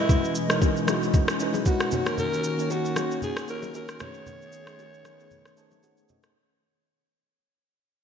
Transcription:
0.00 1.90 B2 medium
0.00 1.88 E3 medium
0.00 0.35 G#3 medium
0.00 0.35 C#4 medium
0.00 6.32 C#4 medium
0.00 0.36 E4 medium
0.00 0.36 B4 medium
0.00 0.36 D#5 medium
0.00 1.88 D#5 medium
0.09 kick loud
0.09 low conga medium
0.09 shaker medium
0.25 shaker soft
0.35 shaker loud
0.48 0.80 G#3 medium
0.48 0.80 C#4 medium
0.48 0.81 D#4 medium
0.48 0.81 E4 medium
0.48 0.82 A#4 loud
0.48 cross-stick medium
0.48 shaker medium
0.62 kick medium
0.62 high bongo medium
0.62 shaker medium
0.77 shaker medium
0.86 1.30 G#3 medium
0.86 1.30 C#4 medium
0.86 1.31 D#4 medium
0.86 1.31 E4 medium
0.86 1.32 F#4 loud
0.86 cross-stick medium
0.86 low bongo medium
0.86 shaker medium
1.03 shaker medium
1.14 kick loud
1.14 low conga medium
1.14 shaker medium
1.28 cross-stick loud
1.28 shaker medium
1.39 1.91 G#3 medium
1.39 1.91 C#4 medium
1.39 1.91 D#4 medium
1.39 1.93 E4 medium
1.39 1.93 B4 loud
1.39 shaker medium
1.54 low bongo medium
1.54 shaker soft
1.66 2.09 F#4 medium
1.66 kick loud
1.66 high bongo medium
1.66 shaker medium
1.80 cross-stick medium
1.80 shaker medium
1.91 3.99 D#3 medium
1.91 2.44 A#3 medium
1.91 2.44 C#4 medium
1.91 2.44 D#4 medium
1.91 3.99 F#4 medium
1.91 2.45 F#4 medium
1.91 2.45 C#5 medium
1.91 high bongo medium
1.91 low conga medium
1.91 shaker medium
2.06 2.19 A#4 medium
2.06 cross-stick medium
2.06 shaker soft
2.18 2.67 A#4 loud
2.18 low conga medium
2.18 shaker medium
2.33 shaker soft
2.44 shaker medium
2.57 2.89 A#3 medium
2.57 2.89 C#4 medium
2.57 2.90 D#4 medium
2.57 2.90 F#4 medium
2.57 2.91 C#5 medium
2.57 shaker medium
2.70 3.19 F#4 medium
2.70 high bongo medium
2.70 shaker medium
2.85 shaker soft
2.95 3.38 A#3 medium
2.95 3.39 C#4 medium
2.95 3.39 D#4 medium
2.95 3.40 F#4 medium
2.95 3.40 C#5 medium
2.95 cross-stick medium
2.95 low bongo medium
2.95 shaker medium
3.11 shaker medium
3.22 3.47 G#4 medium
3.22 low conga medium
3.22 shaker medium
3.37 cross-stick loud
3.37 shaker soft
3.47 4.00 A#3 medium
3.47 3.99 C#4 medium
3.47 4.00 D#4 medium
3.47 4.01 F#4 medium
3.47 3.73 A#4 medium
3.47 4.02 C#5 medium
3.47 shaker medium
3.62 low bongo medium
3.62 shaker soft
3.74 4.03 A#4 medium
3.74 high bongo medium
3.74 shaker medium
3.89 cross-stick medium
3.89 shaker medium
3.99 6.33 D#3 medium
3.99 4.52 A3 medium
3.99 6.33 A3 medium
3.99 6.33 B3 medium
3.99 4.53 C#4 medium
3.99 4.53 D#4 medium
3.99 6.33 G#4 medium
3.99 4.53 G#4 medium
3.99 4.54 B4 medium
3.99 6.10 C#5 loud
3.99 cross-stick loud
3.99 high bongo medium
3.99 low conga medium
3.99 shaker medium
4.14 shaker soft
4.26 low conga medium
4.26 shaker medium
4.42 shaker soft
4.52 shaker medium
4.66 4.97 A3 medium
4.66 4.98 C#4 medium
4.66 4.98 D#4 medium
4.66 4.99 G#4 medium
4.66 4.99 C#5 medium
4.66 cross-stick medium
4.66 shaker medium
4.79 high bongo medium
4.79 shaker medium
4.94 shaker soft
5.04 5.47 A3 medium
5.04 5.48 C#4 medium
5.04 5.48 D#4 medium
5.04 5.49 G#4 medium
5.04 5.13 A#4 medium
5.04 cross-stick medium
5.04 low bongo medium
5.04 shaker medium
5.14 5.52 B4 medium
5.20 shaker medium
5.31 low conga medium
5.31 shaker medium
5.45 cross-stick medium
5.45 shaker medium
5.56 6.20 A3 medium
5.56 6.21 C#4 medium
5.56 6.21 D#4 medium
5.56 6.21 G#4 medium
5.56 5.65 C5 medium
5.56 5.82 A5 medium
5.56 shaker medium
5.66 6.25 C#5 loud
5.71 low bongo medium
5.71 shaker soft
5.83 6.08 F#5 medium
5.83 high bongo medium
5.83 shaker medium
5.97 shaker soft
6.09 6.34 D#5 medium
6.09 high bongo medium
6.09 low conga medium
6.09 shaker medium
6.23 cross-stick medium
6.23 shaker soft

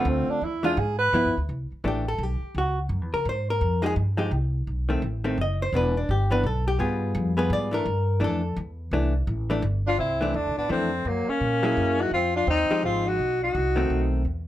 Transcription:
0.00 0.39 D3 medium
0.00 0.39 A3 medium
0.00 0.11 B3 medium
0.00 0.39 C4 medium
0.00 0.39 F4 medium
0.05 0.26 D2 loud
0.09 0.32 C4 medium
0.28 0.46 D4 medium
0.28 muted upright bass stroke soft
0.42 0.76 E2 medium
0.42 0.64 E4 medium
0.63 0.75 E3 medium
0.63 0.76 G#3 medium
0.63 0.76 D4 medium
0.63 0.76 F4 medium
0.63 0.81 F4 loud
0.77 1.12 G#2 loud
0.77 0.98 G#4 medium
0.99 1.38 B4 loud
1.13 1.27 G2 medium
1.13 1.33 F3 medium
1.13 1.34 B3 medium
1.13 1.34 E4 medium
1.25 1.37 F2 medium
1.37 1.48 D2 medium
1.49 1.69 C2 medium
1.72 muted upright bass stroke soft
1.84 2.18 A1 medium
1.84 2.04 E3 soft
1.84 2.04 A3 medium
1.84 2.05 D4 medium
1.84 2.07 G4 medium
2.08 2.23 A4 medium
2.18 2.39 B1 medium
2.23 2.57 G4 medium
2.41 muted upright bass stroke soft
2.55 2.89 C#2 medium
2.55 2.78 F#4 medium
2.89 3.01 F#2 medium
3.01 3.13 E2 medium
3.13 3.25 C#2 medium
3.13 3.26 A#4 medium
3.25 3.60 G#2 medium
3.25 3.49 C5 medium
3.50 3.82 A#4 loud
3.61 3.95 F2 medium
3.82 3.94 F3 medium
3.82 3.95 G#3 medium
3.82 3.95 D#4 medium
3.82 3.86 G4 medium
3.82 3.93 G#4 loud
3.96 4.31 G2 loud
4.17 4.30 F3 medium
4.17 4.30 G#3 medium
4.17 4.30 D#4 medium
4.17 4.31 G4 medium
4.31 4.66 C2 loud
4.67 5.02 B1 medium
4.89 5.01 D#3 medium
4.89 5.01 A3 medium
4.89 5.02 C4 medium
5.02 5.37 A1 medium
5.24 5.36 D#3 medium
5.24 5.37 A3 medium
5.24 5.37 C4 medium
5.38 5.72 F#1 medium
5.38 5.61 D#5 medium
5.62 5.74 C5 medium
5.73 6.07 E1 medium
5.73 5.94 E3 medium
5.73 5.94 B3 medium
5.73 5.94 D4 medium
5.73 5.97 B4 medium
5.97 6.09 D4 medium
6.09 6.43 G1 medium
6.09 6.30 G4 medium
6.31 6.43 E3 medium
6.31 6.43 B3 medium
6.31 6.43 D4 medium
6.31 6.44 B4 loud
6.43 6.78 B1 loud
6.43 6.67 A4 medium
6.68 6.80 G4 medium
6.79 7.14 G2 medium
6.79 7.33 G3 medium
6.79 7.33 B3 medium
6.79 7.33 F4 medium
6.79 7.33 G#4 medium
7.15 7.49 F2 loud
7.37 7.70 G3 medium
7.37 7.71 B3 medium
7.37 7.71 F4 medium
7.37 7.71 G#4 medium
7.37 7.51 B4 medium
7.50 7.85 G#2 loud
7.50 7.73 D5 loud
7.71 7.84 E3 medium
7.71 7.85 A3 medium
7.71 7.85 D4 medium
7.71 8.19 A#4 loud
7.86 8.20 G2 loud
8.20 8.55 F2 loud
8.20 8.41 E3 medium
8.20 8.41 A3 medium
8.20 8.41 D4 medium
8.24 8.56 A4 medium
8.56 8.91 E2 loud
8.91 9.26 C2 medium
8.91 9.13 E3 medium
8.91 9.13 A3 medium
8.91 9.13 D4 medium
9.27 9.62 A1 loud
9.50 9.62 E3 medium
9.50 9.62 A3 medium
9.50 9.62 D4 medium
9.62 9.97 G1 loud
9.87 9.98 D4 medium
9.87 9.99 F4 loud
9.98 10.33 C2 medium
9.98 10.36 C4 medium
9.98 10.38 E4 medium
10.21 10.33 E3 medium
10.21 10.33 A3 medium
10.21 10.33 D4 medium
10.34 10.48 E2 medium
10.34 10.57 A3 medium
10.34 10.57 D4 medium
10.46 10.57 C2 medium
10.57 10.69 A1 medium
10.57 10.70 B3 medium
10.57 10.69 D4 medium
10.69 11.04 F2 medium
10.69 10.90 E3 medium
10.69 10.90 A3 medium
10.69 11.08 A3 medium
10.69 11.09 C4 medium
10.69 10.90 D4 medium
11.05 11.26 F#2 medium
11.05 11.30 F#3 medium
11.05 11.31 A#3 medium
11.28 12.02 A#3 medium
11.28 12.03 C#4 medium
11.28 muted upright bass stroke soft
11.41 11.75 A#2 medium
11.63 12.09 F#3 medium
11.63 12.09 A#3 medium
11.63 12.09 E4 medium
11.63 12.10 G#4 medium
11.77 12.11 F#2 medium
12.00 12.13 D#4 medium
12.00 12.13 F#4 medium
12.11 12.46 F2 medium
12.11 12.34 C4 medium
12.11 12.33 F4 loud
12.36 12.47 D4 medium
12.36 12.48 F4 medium
12.47 12.68 D#2 medium
12.47 12.80 C4 medium
12.47 12.82 D#4 medium
12.71 13.16 F3 medium
12.71 13.16 G#3 medium
12.71 13.16 D#4 medium
12.71 13.17 G4 medium
12.83 13.17 G#1 medium
12.83 13.08 C4 medium
12.83 13.10 F4 medium
13.06 13.41 D#4 medium
13.06 13.42 F#4 medium
13.19 13.53 B1 medium
13.42 14.08 D#4 medium
13.42 14.09 F#4 medium
13.55 13.89 C2 medium
13.76 14.22 D#3 medium
13.76 14.22 A3 medium
13.76 14.23 C4 medium
13.90 14.24 B1 medium
14.25 14.48 E2 medium

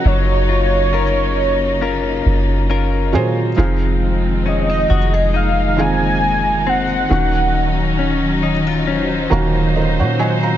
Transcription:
0.00 3.54 C#3 medium
0.00 1.02 F3 medium
0.00 1.02 F#3 medium
0.00 3.54 A#3 medium
0.00 0.92 C#4 medium
0.00 1.02 C#4 medium
0.00 3.54 D#4 medium
0.00 1.03 G#4 medium
0.00 1.03 A#4 medium
0.05 2.22 F#1 loud
0.05 3.57 F#3 medium
0.05 2.70 C#5 loud
0.49 0.93 F4 medium
0.93 1.80 C#4 medium
0.93 1.81 F4 medium
0.93 1.81 A#4 medium
1.81 2.68 C#4 medium
1.81 2.70 F4 medium
1.81 2.70 A#4 medium
2.26 3.15 F#1 medium
2.70 3.67 C#4 medium
2.70 4.45 F4 medium
2.70 3.68 A#4 medium
3.12 3.56 A#2 loud
3.12 3.49 F#3 medium
3.12 3.49 C#4 medium
3.12 3.49 F4 medium
3.12 3.50 G#4 medium
3.12 3.50 C5 medium
3.56 4.86 F1 loud
3.56 10.57 D#3 medium
3.56 4.98 F3 medium
3.56 7.14 F3 medium
3.56 7.07 G#3 medium
3.56 4.98 C4 medium
3.56 5.32 C4 medium
3.56 4.98 D#4 medium
3.56 10.57 D#4 medium
3.56 4.99 G#4 medium
3.56 4.99 F5 medium
4.46 4.70 C#4 medium
4.46 5.31 D#5 medium
4.70 5.33 D#4 soft
4.90 7.07 F1 loud
4.90 5.14 F#4 medium
5.14 7.20 G#4 medium
5.34 7.09 A#3 medium
5.34 8.02 D#4 medium
5.34 5.82 F5 loud
5.77 6.84 F3 medium
5.77 6.84 C4 medium
5.77 6.84 D#4 medium
5.77 6.85 G#4 medium
5.77 6.85 F5 medium
5.77 6.70 G#5 loud
6.67 7.20 C4 medium
6.67 8.44 F#5 loud
7.10 9.27 D#1 loud
7.10 8.51 D#3 medium
7.10 10.57 D#3 medium
7.10 10.57 F#3 medium
7.10 8.51 A#3 medium
7.10 8.85 C#4 medium
7.10 8.51 C#4 medium
7.10 8.52 F#4 medium
7.10 8.52 F#5 medium
7.99 8.86 C#4 medium
8.43 8.67 D#4 medium
8.67 10.57 F4 medium
8.87 10.57 C#4 medium
8.87 10.57 C5 medium
9.30 10.01 D#1 loud
9.30 10.37 D#3 medium
9.30 10.37 A#3 medium
9.30 10.38 C#4 medium
9.30 10.38 F#4 medium
9.30 9.76 F5 medium
9.30 9.72 A#5 medium
9.76 9.98 A#4 medium
9.76 10.19 D#5 medium
9.99 10.57 A#2 medium
9.99 10.19 C#5 medium
9.99 10.19 F#5 medium
10.19 10.57 F#3 medium
10.19 10.42 D#5 medium
10.19 10.42 G#5 medium
10.43 10.57 F5 medium
10.43 10.57 A#5 medium

